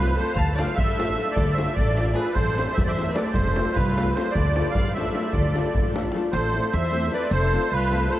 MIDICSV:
0, 0, Header, 1, 6, 480
1, 0, Start_track
1, 0, Key_signature, -1, "minor"
1, 0, Tempo, 396301
1, 445, Time_signature, 5, 3, 24, 8
1, 9927, End_track
2, 0, Start_track
2, 0, Title_t, "Accordion"
2, 0, Program_c, 0, 21
2, 0, Note_on_c, 0, 71, 107
2, 205, Note_on_c, 0, 72, 85
2, 242, Note_off_c, 0, 71, 0
2, 442, Note_on_c, 0, 81, 115
2, 443, Note_off_c, 0, 72, 0
2, 691, Note_on_c, 0, 77, 84
2, 725, Note_off_c, 0, 81, 0
2, 914, Note_on_c, 0, 76, 117
2, 941, Note_off_c, 0, 77, 0
2, 1588, Note_on_c, 0, 74, 95
2, 1652, Note_off_c, 0, 76, 0
2, 1843, Note_on_c, 0, 76, 98
2, 1869, Note_off_c, 0, 74, 0
2, 2109, Note_on_c, 0, 74, 96
2, 2120, Note_off_c, 0, 76, 0
2, 2594, Note_on_c, 0, 71, 74
2, 2621, Note_off_c, 0, 74, 0
2, 2824, Note_on_c, 0, 72, 94
2, 2841, Note_off_c, 0, 71, 0
2, 3309, Note_on_c, 0, 76, 105
2, 3355, Note_off_c, 0, 72, 0
2, 3423, Note_off_c, 0, 76, 0
2, 3451, Note_on_c, 0, 74, 86
2, 3487, Note_on_c, 0, 76, 98
2, 3536, Note_off_c, 0, 74, 0
2, 3808, Note_on_c, 0, 74, 82
2, 3817, Note_off_c, 0, 76, 0
2, 4029, Note_on_c, 0, 72, 90
2, 4049, Note_off_c, 0, 74, 0
2, 4521, Note_on_c, 0, 71, 90
2, 4559, Note_off_c, 0, 72, 0
2, 5017, Note_on_c, 0, 72, 81
2, 5030, Note_off_c, 0, 71, 0
2, 5225, Note_on_c, 0, 74, 108
2, 5254, Note_off_c, 0, 72, 0
2, 5700, Note_on_c, 0, 77, 83
2, 5758, Note_off_c, 0, 74, 0
2, 5962, Note_off_c, 0, 77, 0
2, 5973, Note_on_c, 0, 76, 92
2, 6439, Note_on_c, 0, 74, 78
2, 6452, Note_off_c, 0, 76, 0
2, 7153, Note_off_c, 0, 74, 0
2, 7650, Note_on_c, 0, 72, 91
2, 8140, Note_on_c, 0, 76, 88
2, 8167, Note_off_c, 0, 72, 0
2, 8630, Note_on_c, 0, 74, 74
2, 8635, Note_off_c, 0, 76, 0
2, 8857, Note_off_c, 0, 74, 0
2, 8864, Note_on_c, 0, 72, 94
2, 9344, Note_on_c, 0, 71, 94
2, 9369, Note_off_c, 0, 72, 0
2, 9802, Note_on_c, 0, 72, 82
2, 9830, Note_off_c, 0, 71, 0
2, 9927, Note_off_c, 0, 72, 0
2, 9927, End_track
3, 0, Start_track
3, 0, Title_t, "Violin"
3, 0, Program_c, 1, 40
3, 0, Note_on_c, 1, 65, 84
3, 181, Note_off_c, 1, 65, 0
3, 201, Note_on_c, 1, 69, 90
3, 409, Note_off_c, 1, 69, 0
3, 416, Note_on_c, 1, 77, 102
3, 662, Note_off_c, 1, 77, 0
3, 669, Note_on_c, 1, 74, 73
3, 894, Note_off_c, 1, 74, 0
3, 901, Note_on_c, 1, 69, 91
3, 1575, Note_off_c, 1, 69, 0
3, 1601, Note_on_c, 1, 69, 82
3, 1854, Note_off_c, 1, 69, 0
3, 1861, Note_on_c, 1, 72, 55
3, 2076, Note_off_c, 1, 72, 0
3, 2083, Note_on_c, 1, 69, 80
3, 2557, Note_off_c, 1, 69, 0
3, 2588, Note_on_c, 1, 68, 63
3, 2807, Note_off_c, 1, 68, 0
3, 2815, Note_on_c, 1, 69, 78
3, 3299, Note_off_c, 1, 69, 0
3, 3307, Note_on_c, 1, 72, 78
3, 3396, Note_off_c, 1, 72, 0
3, 3404, Note_on_c, 1, 71, 58
3, 3447, Note_off_c, 1, 71, 0
3, 3454, Note_on_c, 1, 72, 82
3, 3738, Note_off_c, 1, 72, 0
3, 3746, Note_on_c, 1, 71, 79
3, 3972, Note_off_c, 1, 71, 0
3, 3980, Note_on_c, 1, 69, 69
3, 4481, Note_off_c, 1, 69, 0
3, 4515, Note_on_c, 1, 65, 71
3, 4977, Note_off_c, 1, 65, 0
3, 5031, Note_on_c, 1, 69, 66
3, 5217, Note_off_c, 1, 69, 0
3, 5224, Note_on_c, 1, 69, 74
3, 5706, Note_off_c, 1, 69, 0
3, 5743, Note_on_c, 1, 74, 74
3, 5985, Note_off_c, 1, 74, 0
3, 5999, Note_on_c, 1, 69, 71
3, 6419, Note_off_c, 1, 69, 0
3, 6456, Note_on_c, 1, 69, 58
3, 7162, Note_off_c, 1, 69, 0
3, 7665, Note_on_c, 1, 69, 68
3, 8125, Note_off_c, 1, 69, 0
3, 8181, Note_on_c, 1, 72, 86
3, 8609, Note_off_c, 1, 72, 0
3, 8643, Note_on_c, 1, 71, 90
3, 8842, Note_off_c, 1, 71, 0
3, 8877, Note_on_c, 1, 69, 82
3, 9327, Note_off_c, 1, 69, 0
3, 9378, Note_on_c, 1, 65, 82
3, 9802, Note_off_c, 1, 65, 0
3, 9836, Note_on_c, 1, 69, 74
3, 9927, Note_off_c, 1, 69, 0
3, 9927, End_track
4, 0, Start_track
4, 0, Title_t, "Nylon-string guitar"
4, 0, Program_c, 2, 24
4, 0, Note_on_c, 2, 57, 57
4, 8, Note_on_c, 2, 60, 66
4, 15, Note_on_c, 2, 65, 57
4, 27, Note_on_c, 2, 69, 69
4, 151, Note_off_c, 2, 57, 0
4, 158, Note_off_c, 2, 60, 0
4, 160, Note_off_c, 2, 65, 0
4, 166, Note_off_c, 2, 69, 0
4, 213, Note_on_c, 2, 57, 62
4, 223, Note_on_c, 2, 60, 63
4, 229, Note_on_c, 2, 65, 57
4, 236, Note_on_c, 2, 69, 56
4, 371, Note_off_c, 2, 57, 0
4, 376, Note_off_c, 2, 60, 0
4, 379, Note_off_c, 2, 65, 0
4, 383, Note_off_c, 2, 69, 0
4, 707, Note_on_c, 2, 62, 60
4, 708, Note_on_c, 2, 57, 64
4, 710, Note_on_c, 2, 65, 57
4, 721, Note_on_c, 2, 69, 71
4, 870, Note_off_c, 2, 62, 0
4, 872, Note_off_c, 2, 57, 0
4, 872, Note_off_c, 2, 65, 0
4, 878, Note_off_c, 2, 69, 0
4, 1191, Note_on_c, 2, 57, 69
4, 1196, Note_on_c, 2, 65, 67
4, 1209, Note_on_c, 2, 62, 58
4, 1214, Note_on_c, 2, 69, 85
4, 1350, Note_off_c, 2, 57, 0
4, 1352, Note_off_c, 2, 65, 0
4, 1359, Note_off_c, 2, 62, 0
4, 1362, Note_off_c, 2, 69, 0
4, 1423, Note_on_c, 2, 57, 66
4, 1429, Note_on_c, 2, 62, 54
4, 1435, Note_on_c, 2, 65, 55
4, 1443, Note_on_c, 2, 69, 59
4, 1578, Note_off_c, 2, 57, 0
4, 1581, Note_off_c, 2, 62, 0
4, 1582, Note_off_c, 2, 65, 0
4, 1587, Note_off_c, 2, 69, 0
4, 1901, Note_on_c, 2, 57, 62
4, 1906, Note_on_c, 2, 62, 62
4, 1912, Note_on_c, 2, 65, 55
4, 1924, Note_on_c, 2, 69, 61
4, 2069, Note_off_c, 2, 57, 0
4, 2072, Note_off_c, 2, 62, 0
4, 2075, Note_off_c, 2, 65, 0
4, 2081, Note_off_c, 2, 69, 0
4, 2365, Note_on_c, 2, 57, 64
4, 2388, Note_on_c, 2, 62, 60
4, 2395, Note_on_c, 2, 65, 55
4, 2403, Note_on_c, 2, 69, 67
4, 2538, Note_off_c, 2, 57, 0
4, 2550, Note_off_c, 2, 62, 0
4, 2553, Note_off_c, 2, 65, 0
4, 2557, Note_off_c, 2, 69, 0
4, 2575, Note_on_c, 2, 57, 61
4, 2586, Note_on_c, 2, 62, 52
4, 2604, Note_on_c, 2, 65, 55
4, 2612, Note_on_c, 2, 69, 60
4, 2755, Note_off_c, 2, 57, 0
4, 2760, Note_off_c, 2, 62, 0
4, 2769, Note_off_c, 2, 65, 0
4, 2773, Note_off_c, 2, 69, 0
4, 3095, Note_on_c, 2, 57, 54
4, 3095, Note_on_c, 2, 60, 55
4, 3105, Note_on_c, 2, 64, 58
4, 3110, Note_on_c, 2, 69, 69
4, 3266, Note_off_c, 2, 60, 0
4, 3268, Note_off_c, 2, 57, 0
4, 3273, Note_off_c, 2, 64, 0
4, 3274, Note_off_c, 2, 69, 0
4, 3599, Note_on_c, 2, 57, 69
4, 3608, Note_on_c, 2, 60, 49
4, 3615, Note_on_c, 2, 64, 57
4, 3626, Note_on_c, 2, 69, 73
4, 3757, Note_off_c, 2, 57, 0
4, 3761, Note_off_c, 2, 60, 0
4, 3765, Note_off_c, 2, 64, 0
4, 3770, Note_off_c, 2, 69, 0
4, 3816, Note_on_c, 2, 57, 60
4, 3823, Note_on_c, 2, 64, 57
4, 3825, Note_on_c, 2, 60, 60
4, 3848, Note_on_c, 2, 69, 65
4, 3977, Note_off_c, 2, 57, 0
4, 3980, Note_off_c, 2, 64, 0
4, 3981, Note_off_c, 2, 60, 0
4, 3993, Note_off_c, 2, 69, 0
4, 4321, Note_on_c, 2, 57, 68
4, 4330, Note_on_c, 2, 60, 58
4, 4332, Note_on_c, 2, 65, 58
4, 4350, Note_on_c, 2, 69, 67
4, 4482, Note_off_c, 2, 57, 0
4, 4486, Note_off_c, 2, 65, 0
4, 4488, Note_off_c, 2, 60, 0
4, 4496, Note_off_c, 2, 69, 0
4, 4813, Note_on_c, 2, 57, 75
4, 4821, Note_on_c, 2, 60, 59
4, 4828, Note_on_c, 2, 65, 62
4, 4834, Note_on_c, 2, 69, 62
4, 4966, Note_off_c, 2, 57, 0
4, 4968, Note_off_c, 2, 60, 0
4, 4973, Note_off_c, 2, 65, 0
4, 4976, Note_off_c, 2, 69, 0
4, 5036, Note_on_c, 2, 57, 63
4, 5041, Note_on_c, 2, 60, 53
4, 5048, Note_on_c, 2, 65, 52
4, 5061, Note_on_c, 2, 69, 74
4, 5188, Note_off_c, 2, 57, 0
4, 5191, Note_off_c, 2, 60, 0
4, 5193, Note_off_c, 2, 65, 0
4, 5201, Note_off_c, 2, 69, 0
4, 5519, Note_on_c, 2, 57, 54
4, 5527, Note_on_c, 2, 62, 52
4, 5535, Note_on_c, 2, 65, 58
4, 5546, Note_on_c, 2, 69, 70
4, 5682, Note_off_c, 2, 57, 0
4, 5686, Note_off_c, 2, 62, 0
4, 5690, Note_off_c, 2, 65, 0
4, 5695, Note_off_c, 2, 69, 0
4, 6006, Note_on_c, 2, 57, 59
4, 6015, Note_on_c, 2, 62, 63
4, 6025, Note_on_c, 2, 65, 60
4, 6034, Note_on_c, 2, 69, 80
4, 6163, Note_off_c, 2, 57, 0
4, 6167, Note_off_c, 2, 62, 0
4, 6172, Note_off_c, 2, 65, 0
4, 6174, Note_off_c, 2, 69, 0
4, 6212, Note_on_c, 2, 62, 56
4, 6213, Note_on_c, 2, 57, 65
4, 6223, Note_on_c, 2, 65, 51
4, 6231, Note_on_c, 2, 69, 55
4, 6376, Note_off_c, 2, 62, 0
4, 6377, Note_off_c, 2, 57, 0
4, 6383, Note_off_c, 2, 65, 0
4, 6385, Note_off_c, 2, 69, 0
4, 6699, Note_on_c, 2, 57, 60
4, 6708, Note_on_c, 2, 62, 52
4, 6710, Note_on_c, 2, 65, 60
4, 6726, Note_on_c, 2, 69, 70
4, 6873, Note_off_c, 2, 57, 0
4, 6875, Note_off_c, 2, 62, 0
4, 6878, Note_off_c, 2, 65, 0
4, 6886, Note_off_c, 2, 69, 0
4, 7178, Note_on_c, 2, 57, 70
4, 7191, Note_on_c, 2, 62, 71
4, 7198, Note_on_c, 2, 65, 73
4, 7213, Note_on_c, 2, 69, 83
4, 7348, Note_off_c, 2, 57, 0
4, 7354, Note_off_c, 2, 62, 0
4, 7358, Note_off_c, 2, 65, 0
4, 7365, Note_off_c, 2, 69, 0
4, 7420, Note_on_c, 2, 57, 64
4, 7426, Note_on_c, 2, 62, 68
4, 7446, Note_on_c, 2, 65, 59
4, 7454, Note_on_c, 2, 69, 75
4, 7580, Note_off_c, 2, 57, 0
4, 7583, Note_off_c, 2, 62, 0
4, 7593, Note_off_c, 2, 65, 0
4, 7597, Note_off_c, 2, 69, 0
4, 7906, Note_on_c, 2, 57, 59
4, 7914, Note_on_c, 2, 60, 52
4, 7926, Note_on_c, 2, 64, 63
4, 7942, Note_on_c, 2, 69, 70
4, 8074, Note_off_c, 2, 57, 0
4, 8078, Note_off_c, 2, 60, 0
4, 8084, Note_off_c, 2, 64, 0
4, 8092, Note_off_c, 2, 69, 0
4, 8368, Note_on_c, 2, 57, 71
4, 8388, Note_on_c, 2, 60, 66
4, 8389, Note_on_c, 2, 64, 61
4, 8405, Note_on_c, 2, 69, 66
4, 8540, Note_off_c, 2, 57, 0
4, 8550, Note_off_c, 2, 60, 0
4, 8550, Note_off_c, 2, 64, 0
4, 8558, Note_off_c, 2, 69, 0
4, 8604, Note_on_c, 2, 57, 59
4, 8609, Note_on_c, 2, 60, 65
4, 8612, Note_on_c, 2, 69, 65
4, 8617, Note_on_c, 2, 64, 47
4, 8769, Note_off_c, 2, 57, 0
4, 8771, Note_off_c, 2, 69, 0
4, 8772, Note_off_c, 2, 60, 0
4, 8775, Note_off_c, 2, 64, 0
4, 9112, Note_on_c, 2, 57, 65
4, 9124, Note_on_c, 2, 60, 63
4, 9131, Note_on_c, 2, 69, 72
4, 9136, Note_on_c, 2, 65, 59
4, 9273, Note_off_c, 2, 57, 0
4, 9279, Note_off_c, 2, 60, 0
4, 9281, Note_off_c, 2, 69, 0
4, 9285, Note_off_c, 2, 65, 0
4, 9576, Note_on_c, 2, 57, 66
4, 9579, Note_on_c, 2, 60, 62
4, 9590, Note_on_c, 2, 65, 64
4, 9591, Note_on_c, 2, 69, 70
4, 9739, Note_off_c, 2, 57, 0
4, 9739, Note_off_c, 2, 60, 0
4, 9745, Note_off_c, 2, 69, 0
4, 9747, Note_off_c, 2, 65, 0
4, 9796, Note_on_c, 2, 57, 62
4, 9806, Note_on_c, 2, 60, 52
4, 9812, Note_on_c, 2, 65, 47
4, 9820, Note_on_c, 2, 69, 55
4, 9927, Note_off_c, 2, 57, 0
4, 9927, Note_off_c, 2, 60, 0
4, 9927, Note_off_c, 2, 65, 0
4, 9927, Note_off_c, 2, 69, 0
4, 9927, End_track
5, 0, Start_track
5, 0, Title_t, "Upright bass"
5, 0, Program_c, 3, 32
5, 0, Note_on_c, 3, 36, 101
5, 171, Note_off_c, 3, 36, 0
5, 444, Note_on_c, 3, 38, 105
5, 745, Note_off_c, 3, 38, 0
5, 949, Note_on_c, 3, 33, 99
5, 1368, Note_off_c, 3, 33, 0
5, 1657, Note_on_c, 3, 38, 99
5, 1956, Note_off_c, 3, 38, 0
5, 2164, Note_on_c, 3, 33, 98
5, 2579, Note_off_c, 3, 33, 0
5, 2859, Note_on_c, 3, 33, 94
5, 3158, Note_off_c, 3, 33, 0
5, 3366, Note_on_c, 3, 40, 94
5, 3782, Note_off_c, 3, 40, 0
5, 4063, Note_on_c, 3, 29, 97
5, 4362, Note_off_c, 3, 29, 0
5, 4568, Note_on_c, 3, 36, 93
5, 4984, Note_off_c, 3, 36, 0
5, 5274, Note_on_c, 3, 38, 103
5, 5570, Note_off_c, 3, 38, 0
5, 5762, Note_on_c, 3, 33, 84
5, 6180, Note_off_c, 3, 33, 0
5, 6466, Note_on_c, 3, 38, 97
5, 6764, Note_off_c, 3, 38, 0
5, 6971, Note_on_c, 3, 33, 85
5, 7385, Note_off_c, 3, 33, 0
5, 7667, Note_on_c, 3, 33, 111
5, 7964, Note_off_c, 3, 33, 0
5, 8155, Note_on_c, 3, 40, 109
5, 8572, Note_off_c, 3, 40, 0
5, 8855, Note_on_c, 3, 29, 112
5, 9152, Note_off_c, 3, 29, 0
5, 9347, Note_on_c, 3, 36, 87
5, 9761, Note_off_c, 3, 36, 0
5, 9927, End_track
6, 0, Start_track
6, 0, Title_t, "Davul"
6, 90, Note_on_c, 9, 37, 27
6, 211, Note_off_c, 9, 37, 0
6, 434, Note_on_c, 9, 43, 87
6, 555, Note_off_c, 9, 43, 0
6, 711, Note_on_c, 9, 37, 75
6, 832, Note_off_c, 9, 37, 0
6, 941, Note_on_c, 9, 43, 97
6, 1062, Note_off_c, 9, 43, 0
6, 1206, Note_on_c, 9, 37, 71
6, 1320, Note_off_c, 9, 37, 0
6, 1320, Note_on_c, 9, 37, 28
6, 1441, Note_off_c, 9, 37, 0
6, 1651, Note_on_c, 9, 43, 99
6, 1772, Note_off_c, 9, 43, 0
6, 1803, Note_on_c, 9, 37, 32
6, 1917, Note_off_c, 9, 37, 0
6, 1917, Note_on_c, 9, 37, 69
6, 2038, Note_off_c, 9, 37, 0
6, 2051, Note_on_c, 9, 37, 26
6, 2139, Note_on_c, 9, 43, 81
6, 2172, Note_off_c, 9, 37, 0
6, 2260, Note_off_c, 9, 43, 0
6, 2286, Note_on_c, 9, 37, 26
6, 2391, Note_off_c, 9, 37, 0
6, 2391, Note_on_c, 9, 37, 59
6, 2513, Note_off_c, 9, 37, 0
6, 2527, Note_on_c, 9, 37, 29
6, 2611, Note_off_c, 9, 37, 0
6, 2611, Note_on_c, 9, 37, 57
6, 2732, Note_off_c, 9, 37, 0
6, 2744, Note_on_c, 9, 37, 21
6, 2853, Note_on_c, 9, 43, 78
6, 2865, Note_off_c, 9, 37, 0
6, 2975, Note_off_c, 9, 43, 0
6, 3132, Note_on_c, 9, 37, 60
6, 3253, Note_off_c, 9, 37, 0
6, 3364, Note_on_c, 9, 43, 102
6, 3485, Note_off_c, 9, 43, 0
6, 3615, Note_on_c, 9, 37, 56
6, 3720, Note_off_c, 9, 37, 0
6, 3720, Note_on_c, 9, 37, 25
6, 3822, Note_off_c, 9, 37, 0
6, 3822, Note_on_c, 9, 37, 74
6, 3943, Note_off_c, 9, 37, 0
6, 4045, Note_on_c, 9, 43, 97
6, 4166, Note_off_c, 9, 43, 0
6, 4315, Note_on_c, 9, 37, 78
6, 4436, Note_off_c, 9, 37, 0
6, 4557, Note_on_c, 9, 43, 96
6, 4678, Note_off_c, 9, 43, 0
6, 4816, Note_on_c, 9, 37, 68
6, 4933, Note_off_c, 9, 37, 0
6, 4933, Note_on_c, 9, 37, 32
6, 5051, Note_off_c, 9, 37, 0
6, 5051, Note_on_c, 9, 37, 63
6, 5172, Note_off_c, 9, 37, 0
6, 5273, Note_on_c, 9, 43, 87
6, 5394, Note_off_c, 9, 43, 0
6, 5521, Note_on_c, 9, 37, 72
6, 5642, Note_off_c, 9, 37, 0
6, 5753, Note_on_c, 9, 43, 100
6, 5874, Note_off_c, 9, 43, 0
6, 6016, Note_on_c, 9, 37, 57
6, 6131, Note_off_c, 9, 37, 0
6, 6131, Note_on_c, 9, 37, 29
6, 6236, Note_off_c, 9, 37, 0
6, 6236, Note_on_c, 9, 37, 70
6, 6357, Note_off_c, 9, 37, 0
6, 6456, Note_on_c, 9, 43, 86
6, 6577, Note_off_c, 9, 43, 0
6, 6727, Note_on_c, 9, 37, 61
6, 6848, Note_off_c, 9, 37, 0
6, 6850, Note_on_c, 9, 37, 33
6, 6960, Note_on_c, 9, 43, 94
6, 6971, Note_off_c, 9, 37, 0
6, 7081, Note_off_c, 9, 43, 0
6, 7215, Note_on_c, 9, 37, 69
6, 7315, Note_off_c, 9, 37, 0
6, 7315, Note_on_c, 9, 37, 29
6, 7411, Note_off_c, 9, 37, 0
6, 7411, Note_on_c, 9, 37, 56
6, 7532, Note_off_c, 9, 37, 0
6, 7544, Note_on_c, 9, 37, 27
6, 7666, Note_off_c, 9, 37, 0
6, 9927, End_track
0, 0, End_of_file